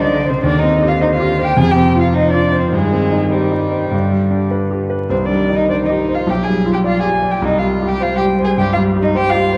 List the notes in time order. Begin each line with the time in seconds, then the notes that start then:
Already playing: C2 D#4 G4 C5
0.00 D3 D4 D5
0.04 D#5
0.25 C5
0.29 C3 C4 C5
0.43 D#2 D3 D4 D5
0.59 D#4 D#5
0.63 C4
0.82 G4
0.87 F4 F5
1.01 D#4 C5 D#5
1.15 F4 F5
1.20 G4
1.39 C5
1.44 G4 G5
1.56 F2 C3 G#4 G#5
1.71 G4 G5
1.76 C4
1.95 F4
2.00 F4 F5
2.14 D#4 C5 D#5
2.30 D4 F4 D5
2.53 C5
2.59 C4 C5
2.72 G2 D#3 G#3 G#4
2.93 C4
3.12 D#4
3.31 G3 G4 C5
3.52 D#4
3.71 C5
3.91 G2 D3
4.11 G3
4.30 D4
4.51 B4
4.71 G4
4.90 B4
5.10 C2 D#3 C4 C5
5.25 D4 D5
5.30 G3
5.50 D#4
5.56 D#4 D#5
5.69 D4 C5 D5
5.85 D#4 G4 D#5
6.08 C5
6.14 F4 F5
6.27 B1 F3 G4 G5
6.43 G#4 G#5
6.47 G3
6.66 F4
6.72 G4 G5
6.84 F4 D5 F5
7.01 G4 G#4 G#5
7.23 D5
7.30 G4 G5
7.42 C2 G3 D#4 D#5
7.58 G3 F4 F5
7.82 G4
7.88 G4 G5
8.00 F4 C5 F5
8.16 G4 G5
8.39 C5
8.45 G#4 G#5
8.57 G2 G4 G5
8.72 F4 F5
8.77 G3
8.96 G4
9.02 D#4 D#5
9.15 G4 C5 G5
9.30 F4 F5
9.34 G4
9.53 C5